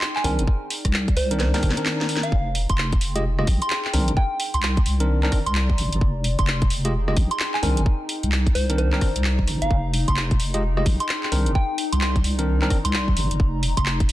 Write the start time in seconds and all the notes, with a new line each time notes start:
Already playing: D#4 G#4 G5 C6
0.01 clap
0.16 G#5, clap
0.24 C2 D#3 C4 D4 A#4 G#5, open hi-hat
0.39 G1 D5, closed hi-hat
0.47 kick
0.70 open hi-hat
0.85 C2, kick, cross-stick, closed hi-hat
0.91 A#5, clap
1.08 kick, closed hi-hat
1.17 C2 C5, open hi-hat
1.31 D#3 C4 D4 A#4, closed hi-hat
1.40 C5, snare, closed hi-hat
1.54 D#3 C4 D4 A#4, snare, open hi-hat
1.63 G1, kick, open hi-hat
1.70 snare
1.77 D#3 C4 D4 A#4, closed hi-hat
1.86 snare, clap
2.01 snare
2.09 open hi-hat
2.17 snare
2.23 F5, closed hi-hat
2.32 F1, kick
2.55 open hi-hat
2.69 F1 G5 C6, kick, closed hi-hat
2.78 G#4, clap
2.92 kick, closed hi-hat
3.01 F1, open hi-hat
3.16 G#3 F4 G4 D#5, closed hi-hat
3.39 G#3 F4 G4 D#5, cross-stick
3.47 A#1, kick, open hi-hat
3.62 C6, closed hi-hat
3.70 clap
3.85 clap
3.93 C2 D#3 C4 D4 A#4, open hi-hat
4.08 G1, closed hi-hat
4.17 G5, kick
4.36 D5, open hi-hat
4.54 C2 C6, closed hi-hat
4.63 C6, clap
4.77 kick, closed hi-hat
4.86 C2 A#5, open hi-hat
5.00 D#3 C4 D4 A#4, closed hi-hat
5.23 D#3 C4 D4 A#4, clap
5.32 kick, cross-stick, open hi-hat
5.46 C2 C6, closed hi-hat
5.55 clap
5.70 kick
5.78 G1, open hi-hat
5.93 G1, closed hi-hat
6.01 F1 D#4, kick
6.24 open hi-hat
6.39 F1 C6, kick, closed hi-hat
6.46 G#4 G5, clap
6.62 kick, closed hi-hat
6.70 F1, open hi-hat
6.85 G#3 F4 G4 D#5, closed hi-hat
7.08 G#3 F4 G4 D#5, cross-stick
7.17 A#1, kick, open hi-hat
7.31 C6, closed hi-hat
7.40 clap
7.54 G#5, clap
7.63 C2 D#3 C4 D4 A#4 G#5, open hi-hat
7.77 G1, closed hi-hat
7.86 kick
8.09 open hi-hat
8.17 D5
8.23 C2, closed hi-hat
8.32 clap
8.47 kick, closed hi-hat
8.55 C2 C5 A#5, open hi-hat
8.70 D#3 C4 D4 A#4, closed hi-hat
8.78 C5, closed hi-hat
8.93 D#3 C4 D4 A#4, clap
9.01 kick, cross-stick, open hi-hat
9.16 C2, closed hi-hat
9.24 clap
9.39 kick
9.47 G1, cross-stick, open hi-hat
9.62 G1 F5, closed hi-hat
9.71 F1, kick
9.94 open hi-hat
10.08 F1 C6, kick, closed hi-hat
10.17 clap
10.31 kick, closed hi-hat
10.40 F1, open hi-hat
10.44 G#4 G5
10.54 G#3 F4 G4 D#5, closed hi-hat
10.77 G#3 F4 G4 D#5, cross-stick
10.86 A#1, kick, open hi-hat
11.00 C6, closed hi-hat
11.09 clap
11.23 clap
11.32 C2 D#3 C4 D4 A#4, open hi-hat
11.46 G1, closed hi-hat
11.55 G5, kick
11.78 open hi-hat
11.88 D5
11.92 C2 C6, closed hi-hat
12.01 C6, clap
12.16 kick, closed hi-hat
12.24 C2 A#5, open hi-hat
12.39 D#3 C4 D4 A#4, closed hi-hat
12.62 D#3 C4 D4 A#4, clap
12.70 kick, cross-stick, open hi-hat
12.85 C2 C6, closed hi-hat
12.93 clap
13.08 kick
13.17 G1, open hi-hat
13.31 G1, closed hi-hat
13.40 F1, kick
13.63 open hi-hat
13.77 F1 C6, kick, closed hi-hat
13.86 clap
14.00 kick, closed hi-hat
14.06 G#4, open hi-hat